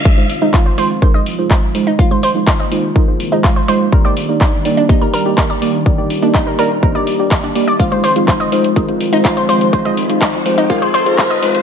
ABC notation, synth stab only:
X:1
M:4/4
L:1/16
Q:1/4=124
K:Fdor
V:1 name="Synth stab"
[A,EFc] [A,EFc] z [A,EFc] c z [A,EFc] z [A,EFB] [A,EFc]2 [A,EFc] z2 [A,EFc] z | [A,EFc] [A,EFc] z [A,EFc] [A,F] z [A,EFc] z [A,EFB] [A,EFc]2 [A,EFc] [A,E]2 [A,EFc] z | [B,EGd] [B,EGd] z [B,EGd] [B,Gd] z [B,EGd] z [B,EGc] [B,EGd]2 [B,EGd] [B,E]2 [B,EGd] z | [B,EGd] [B,EGd] z [B,EGd] [B,EGd] z [B,EGd] z [B,EGc] [B,EGd]2 [B,EGd] z2 [B,EGd] z |
[A,EFc] [A,EFc] z [A,EFc] [A,F] z [A,EFc] z [A,EFB] [A,EFc]2 [A,EFc] [A,EFc]2 [A,EFc] z | [A,EFc] [A,EFc] z [A,EFc] [A,F] z [A,EFc] z [A,EFB] [A,EFc]2 [A,EFc] [A,F]2 [A,EFc] z |]